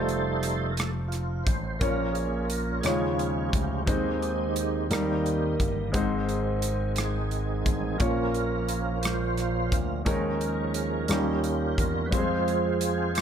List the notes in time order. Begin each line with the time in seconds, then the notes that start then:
Already playing: F1 G3 A3 D#4 F4 A4 C5
0.09 closed hi-hat
0.43 closed hi-hat
0.70 A#4
0.76 A4, closed hi-hat
0.80 cross-stick
1.08 F4
1.12 cross-stick, closed hi-hat
1.44 A1 C5, kick, closed hi-hat
1.79 A#1 A#2 F3 A#3 C#4 F4 A#4 C#5, kick, closed hi-hat
2.12 G#4, closed hi-hat
2.45 A#4
2.50 closed hi-hat
2.81 D#2 C#3 F3 G#3 C#4 D#4 F4 G#4, closed hi-hat
2.85 F4 C#5, cross-stick
3.14 G#4
3.19 closed hi-hat
3.49 G4
3.53 D2, kick, closed hi-hat
3.85 D#2 D#3 G#3 C4 D#4 G4 C5, kick, closed hi-hat
4.22 closed hi-hat
4.56 closed hi-hat
4.90 D#2 D#3 G3 A#3 D#4 A#4, cross-stick, closed hi-hat
5.26 closed hi-hat
5.60 G1, kick, closed hi-hat
5.92 G#1 G#2 D#3 G#3 C4 D#4 C5, kick, closed hi-hat
6.29 closed hi-hat
6.62 closed hi-hat
6.96 C4 D#4 G#4, cross-stick, closed hi-hat
7.31 closed hi-hat
7.66 A1, kick, closed hi-hat
7.98 A#1 A#2 F3 A#3 C#4 F4 A#4 C#5, kick, closed hi-hat
8.34 closed hi-hat
8.69 closed hi-hat
9.01 F4 C5, cross-stick, closed hi-hat
9.38 cross-stick, closed hi-hat
9.72 D2, kick, closed hi-hat
10.05 D#2 D#3 F3 G#3 C#4 D#4 A#4, kick, closed hi-hat
10.41 C#4 A#4, closed hi-hat
10.74 closed hi-hat
11.08 D#2 D#3 G3 A#3 C#4 D#4 F4 G4 A#4, cross-stick, closed hi-hat
11.44 closed hi-hat
11.78 E2 A#4, kick, closed hi-hat
12.06 B4
12.11 F2 F3 G3 G#3 C4 F4 G#4 C5, kick, closed hi-hat
12.17 G#3
12.48 closed hi-hat
12.81 closed hi-hat
13.15 cross-stick, closed hi-hat